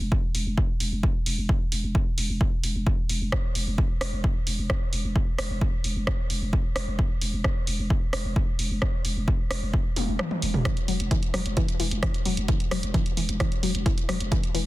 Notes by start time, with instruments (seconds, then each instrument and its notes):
0.01 808-style bass E1
0.12 kick
0.35 808-style bass E1, open hi-hat
0.46 808-style bass E1
0.58 kick
0.80 808-style bass E1, open hi-hat
0.92 808-style bass E1
1.03 kick
1.26 808-style bass E1, open hi-hat
1.38 808-style bass E1
1.49 kick
1.72 808-style bass E1, open hi-hat
1.83 808-style bass E1
1.95 kick
2.18 808-style bass E1, open hi-hat
2.29 808-style bass E1
2.41 kick
2.64 808-style bass E1, open hi-hat
2.75 808-style bass E1
2.87 kick
3.09 808-style bass E1, open hi-hat
3.21 808-style bass E1
3.32 kick, cross-stick
3.55 808-style bass E1, open hi-hat
3.67 808-style bass E1
3.78 kick
4.01 808-style bass E1, cross-stick, open hi-hat
4.13 808-style bass E1
4.24 kick
4.47 808-style bass E1, open hi-hat
4.58 808-style bass E1
4.70 kick, cross-stick
4.93 808-style bass E1, open hi-hat
5.04 808-style bass E1
5.16 kick
5.38 808-style bass E1, cross-stick, open hi-hat
5.50 808-style bass E1
5.61 kick
5.84 808-style bass E1, open hi-hat
5.96 808-style bass E1
6.07 kick, cross-stick
6.30 808-style bass E1, open hi-hat
6.42 808-style bass E1
6.53 kick
6.76 808-style bass E1, cross-stick, open hi-hat
6.87 808-style bass E1
6.99 kick
7.21 808-style bass E1, open hi-hat
7.33 808-style bass E1
7.44 kick, cross-stick
7.67 808-style bass E1, open hi-hat
7.79 808-style bass E1
7.90 kick
8.13 808-style bass E1, cross-stick, open hi-hat
8.25 808-style bass E1
8.36 kick
8.59 808-style bass E1, open hi-hat
8.71 808-style bass E1
8.82 kick, cross-stick
9.05 808-style bass E1, open hi-hat
9.17 808-style bass E1
9.28 kick
9.51 808-style bass E1, cross-stick, open hi-hat
9.62 808-style bass E1
9.74 kick
9.96 808-style bass E1, open hi-hat, high tom
10.08 808-style bass E1
10.19 cross-stick, mid tom
10.31 mid tom
10.42 808-style bass E1, open hi-hat
10.54 808-style bass E1, mid tom
10.65 synth arpeggio sound E3, kick, cross-stick, closed hi-hat
10.77 closed hi-hat
10.88 808-style bass E1, synth arpeggio sound F#3, open hi-hat
11.00 808-style bass E1, closed hi-hat
11.11 synth arpeggio sound E3, kick, closed hi-hat
11.23 closed hi-hat
11.34 808-style bass E1, synth arpeggio sound F#3, cross-stick, open hi-hat
11.46 808-style bass E1, closed hi-hat
11.57 synth arpeggio sound E3, kick, closed hi-hat
11.68 closed hi-hat
11.80 808-style bass E1, synth arpeggio sound E3, open hi-hat
11.91 808-style bass E1, closed hi-hat
12.03 synth arpeggio sound E3, kick, cross-stick, closed hi-hat
12.14 closed hi-hat
12.25 808-style bass E1, synth arpeggio sound F#3, open hi-hat
12.37 808-style bass E1, closed hi-hat
12.48 synth arpeggio sound E3, kick, closed hi-hat
12.60 closed hi-hat
12.71 808-style bass E1, synth arpeggio sound F#3, cross-stick, open hi-hat
12.83 808-style bass E1, closed hi-hat
12.94 synth arpeggio sound E3, kick, closed hi-hat
13.06 closed hi-hat
13.17 808-style bass E1, synth arpeggio sound E3, open hi-hat
13.29 808-style bass E1, closed hi-hat
13.40 synth arpeggio sound E3, kick, cross-stick, closed hi-hat
13.52 closed hi-hat
13.63 808-style bass E1, synth arpeggio sound F#3, open hi-hat
13.75 808-style bass E1, closed hi-hat
13.86 synth arpeggio sound E3, kick, closed hi-hat
13.98 closed hi-hat
14.09 808-style bass E1, synth arpeggio sound F#3, cross-stick, open hi-hat
14.20 808-style bass E1, closed hi-hat
14.32 synth arpeggio sound E3, kick, closed hi-hat
14.43 closed hi-hat
14.54 808-style bass E1, synth arpeggio sound E3, open hi-hat